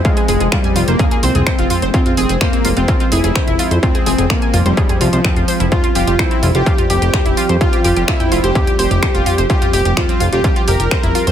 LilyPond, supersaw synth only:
\new Staff \with { instrumentName = "Supersaw synth" } { \time 4/4 \key f \minor \tempo 4 = 127 aes8 aes8 g8 r16 bes8 r16 c'4~ c'16 r16 | c'8 c'8 bes8 r16 c'8 r16 e'4~ e'16 r16 | c'8 c'8 bes8 r16 g8 r16 f4~ f16 r16 | f'8 f'8 e'8 r16 g'8 r16 g'4~ g'16 r16 |
f'8 f'8 e'8 r16 g'8 r16 g'4~ g'16 r16 | g'8 g'8 f'8 r16 g'8 r16 bes'4~ bes'16 r16 | }